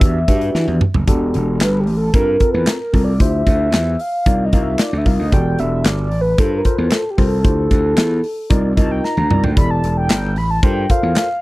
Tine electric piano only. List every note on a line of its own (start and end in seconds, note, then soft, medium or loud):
0.00 0.17 D4 medium
0.00 0.17 F#4 medium
0.00 0.17 G4 medium
0.00 0.17 B4 medium
0.28 0.83 D4 medium
0.28 0.83 F#4 medium
0.28 0.84 G4 medium
0.28 0.84 B4 medium
1.08 1.81 D4 medium
1.08 1.81 F#4 medium
1.08 1.82 G4 medium
1.08 1.82 A4 medium
2.13 2.35 C4 medium
2.13 2.35 F4 medium
2.13 2.35 A4 medium
2.13 2.35 A#4 medium
2.40 2.77 C4 medium
2.40 2.77 F4 medium
2.40 2.77 A4 medium
2.40 2.77 A#4 medium
2.93 3.12 C4 medium
2.93 3.12 F4 medium
2.93 3.12 A4 medium
2.93 3.12 A#4 medium
3.20 3.94 E4 medium
3.20 3.94 F4 medium
3.20 3.94 G4 medium
3.20 3.94 C5 medium
4.26 4.47 D#4 medium
4.26 4.48 F4 medium
4.26 4.48 A#4 medium
4.26 4.48 D5 medium
4.53 4.90 D#4 medium
4.53 4.90 F4 medium
4.53 4.90 A#4 medium
4.53 4.90 F5 medium
5.06 5.24 D#4 medium
5.06 5.24 F4 medium
5.06 5.24 A#4 medium
5.06 5.25 F5 medium
5.32 6.06 F#4 medium
5.32 6.06 G4 medium
5.32 6.07 A4 medium
5.32 6.07 D5 medium
6.38 6.60 F4 medium
6.38 6.60 A4 medium
6.38 6.60 A#4 medium
6.38 6.60 C5 medium
6.65 7.02 F4 medium
6.65 7.02 A4 medium
6.65 7.02 A#4 medium
6.65 7.02 C5 medium
7.18 7.36 F4 medium
7.18 7.37 A4 medium
7.18 7.37 A#4 medium
7.18 7.37 C5 medium
7.44 8.19 E4 medium
7.44 8.19 F4 medium
7.44 8.19 G4 medium
7.44 8.19 C5 medium
8.50 8.72 D#4 medium
8.50 8.72 F4 medium
8.50 8.72 A#4 medium
8.50 8.72 D5 medium
8.77 9.14 D#4 medium
8.77 9.14 F4 medium
8.77 9.14 A#4 medium
8.77 9.14 D#5 medium
9.30 9.49 D#4 medium
9.30 9.49 F4 medium
9.30 9.49 A#4 medium
9.30 9.49 D5 medium
9.57 10.31 E4 medium
9.57 10.31 G4 medium
9.57 10.31 A4 medium
9.57 10.31 D5 medium
10.63 10.84 F4 medium
10.63 10.85 A4 medium
10.63 10.85 A#4 medium
10.63 10.85 C5 medium
10.90 11.27 F4 medium
10.90 11.27 A4 medium
10.90 11.27 A#4 medium
10.90 11.27 C5 medium